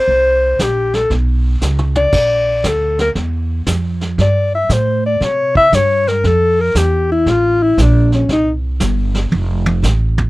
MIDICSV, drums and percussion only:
0, 0, Header, 1, 2, 480
1, 0, Start_track
1, 0, Key_signature, -1, "major"
1, 0, Tempo, 513259
1, 75, Time_signature, 4, 2, 24, 8
1, 9630, End_track
2, 0, Start_track
2, 0, Title_t, "Drums"
2, 76, Note_on_c, 9, 25, 47
2, 553, Note_on_c, 9, 36, 17
2, 554, Note_on_c, 9, 38, 58
2, 554, Note_on_c, 9, 44, 54
2, 647, Note_off_c, 9, 36, 0
2, 648, Note_off_c, 9, 38, 0
2, 648, Note_off_c, 9, 44, 0
2, 874, Note_on_c, 9, 38, 47
2, 967, Note_off_c, 9, 38, 0
2, 1032, Note_on_c, 9, 36, 22
2, 1033, Note_off_c, 9, 25, 0
2, 1033, Note_on_c, 9, 25, 52
2, 1033, Note_on_c, 9, 38, 42
2, 1125, Note_off_c, 9, 36, 0
2, 1126, Note_off_c, 9, 38, 0
2, 1510, Note_on_c, 9, 38, 48
2, 1510, Note_on_c, 9, 44, 61
2, 1604, Note_off_c, 9, 38, 0
2, 1604, Note_off_c, 9, 44, 0
2, 1669, Note_on_c, 9, 47, 52
2, 1763, Note_off_c, 9, 47, 0
2, 1827, Note_on_c, 9, 47, 76
2, 1921, Note_off_c, 9, 47, 0
2, 1987, Note_off_c, 9, 25, 0
2, 1987, Note_on_c, 9, 25, 53
2, 1987, Note_on_c, 9, 38, 43
2, 1987, Note_on_c, 9, 49, 69
2, 1989, Note_on_c, 9, 36, 73
2, 2081, Note_off_c, 9, 38, 0
2, 2081, Note_off_c, 9, 49, 0
2, 2083, Note_off_c, 9, 36, 0
2, 2467, Note_on_c, 9, 38, 64
2, 2467, Note_on_c, 9, 44, 58
2, 2470, Note_on_c, 9, 36, 25
2, 2561, Note_off_c, 9, 38, 0
2, 2561, Note_off_c, 9, 44, 0
2, 2563, Note_off_c, 9, 36, 0
2, 2793, Note_on_c, 9, 38, 54
2, 2887, Note_off_c, 9, 38, 0
2, 2949, Note_off_c, 9, 25, 0
2, 2949, Note_on_c, 9, 25, 56
2, 2949, Note_on_c, 9, 38, 41
2, 2950, Note_on_c, 9, 36, 18
2, 3043, Note_off_c, 9, 38, 0
2, 3044, Note_off_c, 9, 36, 0
2, 3427, Note_on_c, 9, 38, 68
2, 3427, Note_on_c, 9, 44, 60
2, 3430, Note_on_c, 9, 36, 22
2, 3521, Note_off_c, 9, 38, 0
2, 3521, Note_off_c, 9, 44, 0
2, 3523, Note_off_c, 9, 36, 0
2, 3751, Note_on_c, 9, 38, 41
2, 3844, Note_off_c, 9, 38, 0
2, 3911, Note_on_c, 9, 36, 21
2, 3912, Note_off_c, 9, 25, 0
2, 3912, Note_on_c, 9, 25, 49
2, 3912, Note_on_c, 9, 38, 44
2, 4005, Note_off_c, 9, 36, 0
2, 4006, Note_off_c, 9, 38, 0
2, 4391, Note_on_c, 9, 36, 24
2, 4392, Note_on_c, 9, 38, 61
2, 4392, Note_on_c, 9, 44, 52
2, 4485, Note_off_c, 9, 36, 0
2, 4486, Note_off_c, 9, 38, 0
2, 4486, Note_off_c, 9, 44, 0
2, 4873, Note_on_c, 9, 36, 21
2, 4877, Note_off_c, 9, 25, 0
2, 4877, Note_on_c, 9, 25, 47
2, 4877, Note_on_c, 9, 38, 44
2, 4967, Note_off_c, 9, 36, 0
2, 4970, Note_off_c, 9, 38, 0
2, 5193, Note_on_c, 9, 36, 50
2, 5287, Note_off_c, 9, 36, 0
2, 5353, Note_on_c, 9, 36, 26
2, 5353, Note_on_c, 9, 38, 60
2, 5353, Note_on_c, 9, 44, 56
2, 5446, Note_off_c, 9, 36, 0
2, 5447, Note_off_c, 9, 38, 0
2, 5447, Note_off_c, 9, 44, 0
2, 5678, Note_on_c, 9, 38, 37
2, 5772, Note_off_c, 9, 38, 0
2, 5834, Note_on_c, 9, 36, 22
2, 5837, Note_off_c, 9, 25, 0
2, 5837, Note_on_c, 9, 25, 55
2, 5837, Note_on_c, 9, 38, 46
2, 5928, Note_off_c, 9, 36, 0
2, 5930, Note_off_c, 9, 38, 0
2, 6313, Note_on_c, 9, 36, 23
2, 6314, Note_on_c, 9, 38, 67
2, 6314, Note_on_c, 9, 44, 66
2, 6407, Note_off_c, 9, 36, 0
2, 6408, Note_off_c, 9, 38, 0
2, 6408, Note_off_c, 9, 44, 0
2, 6793, Note_off_c, 9, 25, 0
2, 6793, Note_on_c, 9, 25, 46
2, 6793, Note_on_c, 9, 38, 42
2, 6794, Note_on_c, 9, 36, 25
2, 6887, Note_off_c, 9, 36, 0
2, 6887, Note_off_c, 9, 38, 0
2, 7274, Note_on_c, 9, 36, 27
2, 7276, Note_on_c, 9, 38, 59
2, 7276, Note_on_c, 9, 44, 57
2, 7368, Note_off_c, 9, 36, 0
2, 7370, Note_off_c, 9, 38, 0
2, 7370, Note_off_c, 9, 44, 0
2, 7593, Note_on_c, 9, 38, 39
2, 7686, Note_off_c, 9, 38, 0
2, 7752, Note_off_c, 9, 25, 0
2, 7752, Note_on_c, 9, 25, 49
2, 7752, Note_on_c, 9, 38, 45
2, 7753, Note_on_c, 9, 36, 20
2, 7846, Note_off_c, 9, 38, 0
2, 7847, Note_off_c, 9, 36, 0
2, 8230, Note_on_c, 9, 38, 60
2, 8230, Note_on_c, 9, 44, 57
2, 8233, Note_on_c, 9, 36, 21
2, 8324, Note_off_c, 9, 38, 0
2, 8324, Note_off_c, 9, 44, 0
2, 8327, Note_off_c, 9, 36, 0
2, 8551, Note_on_c, 9, 38, 42
2, 8644, Note_off_c, 9, 38, 0
2, 8713, Note_on_c, 9, 48, 43
2, 8806, Note_off_c, 9, 48, 0
2, 9033, Note_on_c, 9, 48, 69
2, 9127, Note_off_c, 9, 48, 0
2, 9195, Note_on_c, 9, 38, 66
2, 9195, Note_on_c, 9, 44, 55
2, 9289, Note_off_c, 9, 38, 0
2, 9289, Note_off_c, 9, 44, 0
2, 9518, Note_on_c, 9, 43, 80
2, 9611, Note_off_c, 9, 43, 0
2, 9630, Note_off_c, 9, 25, 0
2, 9630, End_track
0, 0, End_of_file